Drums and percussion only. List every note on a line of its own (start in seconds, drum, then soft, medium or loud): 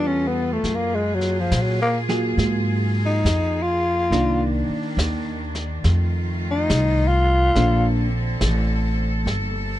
0.64 brush sweep soft
0.64 snare soft
1.21 snare soft
1.52 snare medium
1.52 hi-hat pedal soft
2.09 snare soft
2.38 brush sweep soft
2.38 snare soft
3.26 snare medium
3.26 hi-hat pedal medium
4.12 brush sweep soft
4.12 snare soft
4.99 snare medium
4.99 hi-hat pedal medium
5.55 snare soft
5.84 brush sweep soft
5.84 snare soft
6.70 snare medium
6.70 hi-hat pedal medium
7.55 brush sweep soft
7.55 snare soft
8.41 snare medium
8.41 hi-hat pedal medium
9.27 brush sweep soft
9.27 snare soft